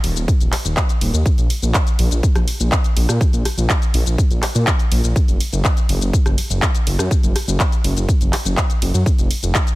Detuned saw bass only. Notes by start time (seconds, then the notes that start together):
0.04 D#1
0.16 D#1
0.41 D#1
0.65 D#1
1.01 D#1
1.14 D#2
1.38 A#1
1.62 A#1
1.99 A#1
2.11 A#1
2.36 A#1
2.60 A#1
2.97 A#1
3.09 A#2
3.33 A#1
3.57 A#1
3.94 A#1
4.06 A#1
4.31 A#1
4.55 A#2
4.92 A#1
5.04 A#1
5.28 F#1
5.53 F#1
5.89 F#1
6.01 F#1
6.26 F#1
6.50 F#1
6.87 F#1
6.99 F#2
7.23 F#1
7.48 F#1
7.84 F#1
7.97 F#1
8.21 F#1
8.45 F#1
8.82 F#1
8.94 F#2
9.18 F1
9.43 F1